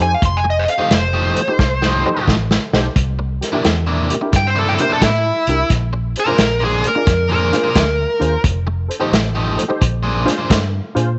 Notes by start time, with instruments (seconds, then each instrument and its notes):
0.00 fingered electric bass F2, honky-tonk piano D#4 G4 A4 C5, lead electric guitar G#5
0.14 lead electric guitar F5
0.22 fingered electric bass F1, lead electric guitar C6, kick, closed hi-hat
0.37 lead electric guitar G#5
0.44 muted overdriven electric guitar stroke
0.50 lead electric guitar D#5
0.59 lead electric guitar C5
0.68 honky-tonk piano A4 C5, lead electric guitar F5, closed hi-hat
0.78 overdriven electric guitar F3 A3 D#4 G4, honky-tonk piano D#4 G4 A4 C5
0.90 fingered electric bass F1, muted overdriven electric guitar stroke, snare, closed hi-hat
0.95 lead electric guitar C5
1.13 overdriven electric guitar F3 A3 D#4 G4
1.36 honky-tonk piano A4 C5, closed hi-hat
1.48 honky-tonk piano D#4 G4 A4 C5, muted overdriven electric guitar stroke
1.59 fingered electric bass C2, muted overdriven electric guitar stroke, kick, snare
1.82 overdriven electric guitar F3 A3 D#4 G4, snare
2.06 honky-tonk piano D#4 G4 A4 C5
2.17 overdriven electric guitar F3 A3 D#4 G4
2.28 fingered electric bass A1, kick, snare
2.51 snare
2.73 fingered electric bass B1, honky-tonk piano D#4 G4 A4 C5, snare
2.96 fingered electric bass C2, kick, closed hi-hat
3.19 muted overdriven electric guitar stroke
3.41 honky-tonk piano G4 A#4, snare, closed hi-hat
3.52 overdriven electric guitar C3 A#3 D4 E4, honky-tonk piano D4 E4 G4 A#4
3.64 fingered electric bass E2, muted overdriven electric guitar stroke, snare, closed hi-hat
3.87 overdriven electric guitar C3 A#3 D4 E4
4.10 honky-tonk piano G4 A#4, closed hi-hat
4.21 honky-tonk piano D4 E4 G4 A#4, muted overdriven electric guitar stroke
4.32 fingered electric bass G2, lead electric guitar G5, muted overdriven electric guitar stroke, kick, snare, closed hi-hat
4.47 lead electric guitar C5
4.55 overdriven electric guitar C3 A#3 D4 E4, lead electric guitar A4
4.69 lead electric guitar G5
4.78 honky-tonk piano D4 E4 G4 A#4, lead electric guitar C5, closed hi-hat
4.89 overdriven electric guitar C3 A#3 D4 E4, lead electric guitar A4
5.01 fingered electric bass A2, lead electric guitar E4, kick, snare, closed hi-hat
5.47 fingered electric bass C2, honky-tonk piano D4 E4 G4 A#4, closed hi-hat
5.70 fingered electric bass A#1, kick, snare, closed hi-hat
5.93 muted overdriven electric guitar stroke
6.16 honky-tonk piano G#4 C5, lead electric guitar A#4, closed hi-hat
6.26 overdriven electric guitar A#3 D4 G#4 C5, honky-tonk piano D4 F4 G#4 C5
6.37 fingered electric bass A#1, muted overdriven electric guitar stroke, snare, closed hi-hat
6.60 overdriven electric guitar A#3 D4 G#4 C5
6.64 lead electric guitar G#4
6.84 honky-tonk piano G#4 C5, lead electric guitar A#4, closed hi-hat
6.95 honky-tonk piano D4 F4 G#4 D5, muted overdriven electric guitar stroke
7.06 fingered electric bass F2, muted overdriven electric guitar stroke, kick, snare, closed hi-hat
7.29 overdriven electric guitar A#3 D4 G#4 C5, lead electric guitar A#4
7.53 honky-tonk piano D4 F4 G#4 C5, snare, closed hi-hat
7.63 overdriven electric guitar A#3 D4 G#4 C5
7.75 fingered electric bass D2, kick, snare, closed hi-hat
8.20 fingered electric bass D#2, honky-tonk piano D4 F4 G#4 C5, closed hi-hat
8.44 fingered electric bass F1, kick, closed hi-hat
8.67 muted overdriven electric guitar stroke
8.88 honky-tonk piano A4 C5, closed hi-hat
8.99 overdriven electric guitar F3 A3 D#4 G4, honky-tonk piano D#4 G4 A4 C5
9.12 fingered electric bass A1, muted overdriven electric guitar stroke, snare, closed hi-hat
9.35 overdriven electric guitar F3 A3 D#4 G4
9.57 honky-tonk piano A4 C5, closed hi-hat
9.68 honky-tonk piano D#4 G4 A4 C5, muted overdriven electric guitar stroke
9.81 fingered electric bass A#1, muted overdriven electric guitar stroke, kick, closed hi-hat
10.03 overdriven electric guitar A#3 D4 G#4 C5
10.25 honky-tonk piano D4 F4 G#4 C5, snare, closed hi-hat
10.38 overdriven electric guitar A#3 D4 G#4 C5
10.50 fingered electric bass G2, kick, snare, closed hi-hat
10.95 fingered electric bass A#2, honky-tonk piano D4 F4 G#4 C5, closed hi-hat